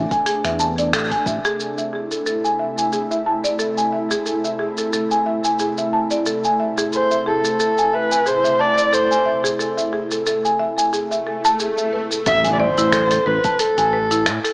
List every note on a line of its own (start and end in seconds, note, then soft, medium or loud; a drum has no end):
0.00 1.56 C3 medium
0.00 1.56 A3 medium
0.00 1.56 D4 medium
0.11 0.25 G#5 medium
0.11 kick medium
0.11 open hi-hat soft
0.11 shaker soft
0.26 0.44 G#4 medium
0.26 open hi-hat medium
0.26 shaker soft
0.45 0.94 E2 medium
0.45 0.59 E5 medium
0.45 finger snap soft
0.45 open hi-hat soft
0.45 shaker soft
0.60 0.76 A5 medium
0.60 shaker medium
0.78 0.92 D5 medium
0.78 open hi-hat soft
0.78 shaker soft
0.93 1.17 A1 medium
0.93 1.10 A4 loud
0.93 finger snap loud
0.93 open hi-hat medium
0.93 shaker soft
1.11 1.25 G#5 medium
1.11 kick medium
1.11 open hi-hat soft
1.11 shaker soft
1.26 1.39 A1 medium
1.26 1.43 E5 medium
1.26 kick loud
1.26 shaker medium
1.45 1.58 G#4 loud
1.45 open hi-hat soft
1.45 shaker soft
1.59 12.22 C3 medium
1.59 12.22 A3 medium
1.59 12.22 E4 medium
1.59 1.77 A4 medium
1.59 shaker soft
1.78 1.86 E5 medium
1.78 shaker soft
1.93 2.03 G#4 medium
2.11 2.25 A4 medium
2.11 shaker medium
2.26 2.43 A4 medium
2.26 shaker soft
2.44 2.58 G#5 medium
2.44 shaker soft
2.59 2.76 E5 medium
2.78 2.91 G#5 medium
2.78 shaker medium
2.93 3.10 G#4 medium
2.93 shaker soft
3.11 3.25 E5 medium
3.11 shaker soft
3.26 3.43 A5 medium
3.44 3.59 D5 medium
3.44 shaker medium
3.59 3.76 A4 medium
3.59 shaker soft
3.77 3.91 G#5 medium
3.77 shaker soft
3.93 4.09 E5 medium
4.11 4.25 G#4 medium
4.11 shaker medium
4.26 4.43 A4 medium
4.26 shaker soft
4.44 4.53 E5 medium
4.44 shaker soft
4.59 4.70 G#4 medium
4.78 4.92 A4 medium
4.78 shaker medium
4.93 5.10 A4 medium
4.93 shaker soft
5.11 5.25 G#5 medium
5.11 shaker soft
5.26 5.43 E5 medium
5.45 5.58 G#5 medium
5.45 shaker medium
5.59 5.77 G#4 medium
5.59 shaker soft
5.78 5.92 E5 medium
5.78 shaker soft
5.93 6.09 A5 medium
6.11 6.25 D5 medium
6.11 shaker medium
6.26 6.43 A4 medium
6.26 shaker medium
6.45 6.58 G#5 medium
6.45 shaker soft
6.60 6.76 E5 medium
6.78 6.91 G#4 medium
6.78 shaker medium
6.93 7.10 A4 medium
6.93 7.24 C5 medium
6.93 shaker soft
7.11 7.20 E5 medium
7.11 shaker soft
7.26 7.37 G#4 medium
7.26 7.96 A4 medium
7.45 7.59 A4 medium
7.45 shaker medium
7.60 7.76 A4 medium
7.60 shaker medium
7.78 7.92 G#5 medium
7.78 shaker soft
7.93 8.29 B4 medium
7.93 8.10 E5 medium
8.12 8.25 G#5 medium
8.12 shaker medium
8.26 8.44 G#4 medium
8.26 8.62 C5 loud
8.26 shaker medium
8.44 8.59 E5 medium
8.44 shaker soft
8.59 8.96 D5 loud
8.59 8.76 A5 medium
8.78 8.92 D5 medium
8.78 shaker medium
8.93 9.09 A4 medium
8.93 9.45 C5 medium
8.93 shaker medium
9.11 9.25 G#5 medium
9.11 shaker soft
9.26 9.42 E5 medium
9.44 9.58 G#4 medium
9.44 shaker medium
9.59 9.77 A4 medium
9.59 shaker medium
9.77 9.86 E5 medium
9.77 shaker soft
9.93 10.03 G#4 medium
10.12 10.25 A4 medium
10.12 shaker medium
10.27 10.43 A4 medium
10.27 shaker soft
10.45 10.58 G#5 medium
10.45 shaker soft
10.59 10.76 E5 medium
10.78 10.91 G#5 medium
10.78 shaker medium
10.93 11.10 G#4 medium
10.93 swell medium
10.93 shaker soft
11.11 11.26 E5 medium
11.11 shaker soft
11.27 11.43 A4 medium
11.45 11.59 A5 loud
11.45 shaker medium
11.60 11.76 G#4 medium
11.60 shaker medium
11.78 11.91 E5 medium
11.78 shaker soft
11.93 12.09 B4 medium
12.11 12.25 A4 medium
12.11 shaker medium
12.26 12.69 A1 loud
12.26 12.44 A4 medium
12.26 12.52 E5 loud
12.26 kick loud
12.26 open hi-hat medium
12.26 impact medium
12.26 shaker medium
12.44 12.58 G#5 medium
12.44 open hi-hat soft
12.44 shaker soft
12.53 12.61 D5 medium
12.60 13.28 C5 loud
12.60 12.70 D5 loud
12.78 13.19 A1 medium
12.78 12.92 E4 medium
12.78 shaker medium
12.93 13.10 A4 loud
12.93 finger snap loud
12.93 open hi-hat medium
12.93 shaker medium
13.11 13.25 A4 loud
13.11 open hi-hat soft
13.11 shaker soft
13.26 13.39 A1 medium
13.26 13.44 B4 medium
13.26 13.61 B4 medium
13.44 13.58 A5 medium
13.44 kick loud
13.44 open hi-hat soft
13.44 shaker medium
13.59 13.77 A4 medium
13.59 14.53 A4 medium
13.59 open hi-hat medium
13.59 shaker medium
13.78 14.28 A1 loud
13.78 13.91 G#5 medium
13.78 open hi-hat soft
13.78 shaker soft
13.93 14.03 B4 medium
14.11 14.25 E4 medium
14.11 open hi-hat soft
14.11 shaker medium
14.26 14.39 A2 loud
14.26 14.43 A4 loud
14.26 finger snap loud
14.26 open hi-hat medium
14.26 shaker medium
14.44 14.53 A4 loud
14.44 open hi-hat soft
14.44 shaker soft